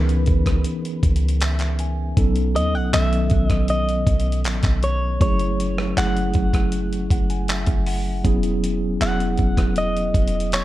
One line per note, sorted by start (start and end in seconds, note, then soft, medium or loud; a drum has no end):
0.00 0.26 C#2 loud
0.00 2.18 E3 medium
0.00 2.17 B3 medium
0.00 2.18 C#4 medium
0.00 2.18 D#4 medium
0.00 2.19 G#4 medium
0.00 2.19 A#4 medium
0.00 1.00 B4 medium
0.00 1.75 B4 medium
0.09 closed hi-hat soft
0.26 0.64 C#2 loud
0.26 kick loud
0.26 closed hi-hat soft
0.46 kick medium
0.46 cross-stick medium
0.46 closed hi-hat medium
0.64 closed hi-hat medium
0.85 closed hi-hat soft
1.03 2.13 C#2 loud
1.03 kick loud
1.03 closed hi-hat medium
1.16 closed hi-hat medium
1.28 closed hi-hat medium
1.41 1.77 E5 medium
1.41 clap loud
1.41 closed hi-hat medium
1.59 clap medium
1.59 closed hi-hat medium
1.79 2.15 G#5 medium
1.79 closed hi-hat medium
2.16 2.57 B1 loud
2.16 2.70 F#3 medium
2.16 2.70 B3 medium
2.16 2.71 C#4 medium
2.16 2.71 D#4 medium
2.16 2.71 A4 loud
2.16 kick loud
2.16 closed hi-hat medium
2.36 closed hi-hat medium
2.56 2.76 D#2 loud
2.56 2.75 D#5 medium
2.56 closed hi-hat medium
2.75 2.92 B1 loud
2.75 2.93 F#5 loud
2.93 3.30 B1 loud
2.93 4.00 D#3 medium
2.93 4.00 F#3 medium
2.93 4.00 B3 medium
2.93 4.00 C#4 medium
2.93 4.01 A4 medium
2.93 3.48 E5 loud
2.93 clap loud
2.93 closed hi-hat medium
3.13 closed hi-hat medium
3.30 4.04 B1 loud
3.30 kick loud
3.30 closed hi-hat soft
3.48 3.70 D#5 loud
3.48 kick medium
3.48 cross-stick medium
3.48 closed hi-hat medium
3.68 4.42 D#5 medium
3.68 closed hi-hat medium
3.89 closed hi-hat medium
4.07 4.47 B1 loud
4.07 kick loud
4.07 closed hi-hat medium
4.20 closed hi-hat medium
4.32 closed hi-hat medium
4.44 4.63 A1 loud
4.44 clap loud
4.44 closed hi-hat medium
4.63 5.18 B1 loud
4.63 kick medium
4.63 clap medium
4.63 closed hi-hat medium
4.83 5.19 C#5 medium
4.83 closed hi-hat medium
5.20 5.94 F#1 loud
5.20 5.74 F#3 medium
5.20 5.74 A3 medium
5.20 5.74 C#4 medium
5.20 5.75 E4 medium
5.20 5.75 G#4 medium
5.20 5.98 C#5 loud
5.20 kick loud
5.20 closed hi-hat medium
5.39 closed hi-hat medium
5.60 closed hi-hat medium
5.78 cross-stick medium
5.96 6.33 F#1 loud
5.96 7.03 F#3 medium
5.96 7.04 A3 medium
5.96 7.04 C#4 medium
5.96 7.04 E4 medium
5.96 7.04 G#4 medium
5.96 7.45 F#5 loud
5.96 clap loud
5.96 closed hi-hat medium
6.17 closed hi-hat soft
6.34 7.08 F#1 loud
6.34 kick medium
6.34 closed hi-hat soft
6.53 kick medium
6.53 cross-stick medium
6.53 closed hi-hat medium
6.72 closed hi-hat medium
6.93 closed hi-hat medium
7.10 7.65 F#1 loud
7.10 7.29 F#5 medium
7.10 kick loud
7.10 closed hi-hat medium
7.30 7.48 G#5 medium
7.30 closed hi-hat medium
7.48 7.84 E5 medium
7.48 clap loud
7.48 closed hi-hat medium
7.66 8.22 F#1 loud
7.66 kick loud
7.66 closed hi-hat medium
7.86 8.22 F#5 medium
7.86 open hi-hat medium
8.24 8.98 E1 loud
8.24 8.78 F#3 medium
8.24 8.78 B3 medium
8.24 8.78 C#4 medium
8.24 8.79 E4 medium
8.24 8.79 G#4 loud
8.24 kick loud
8.24 closed hi-hat medium
8.43 closed hi-hat medium
8.64 closed hi-hat medium
9.00 9.37 E1 loud
9.00 10.07 F#3 medium
9.00 10.07 B3 medium
9.00 10.08 C#4 medium
9.00 10.08 E4 medium
9.00 10.08 G#4 medium
9.00 9.73 F#5 loud
9.00 clap loud
9.00 closed hi-hat medium
9.20 closed hi-hat soft
9.38 10.12 E1 loud
9.38 kick loud
9.38 closed hi-hat soft
9.57 kick medium
9.57 cross-stick medium
9.57 closed hi-hat medium
9.76 10.53 D#5 loud
9.76 closed hi-hat medium
9.97 closed hi-hat soft
10.14 10.64 E1 loud
10.14 kick loud
10.14 closed hi-hat medium
10.28 closed hi-hat medium
10.40 closed hi-hat medium
10.52 10.64 C#5 loud
10.52 clap loud
10.52 closed hi-hat medium